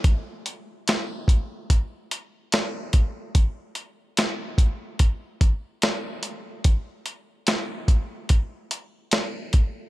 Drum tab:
HH |xxxxxxxx|xxxxxxxx|xxxxxxxx|
SD |--o---o-|--o---o-|--o---o-|
BD |o--oo--o|o--ooo--|o--oo--o|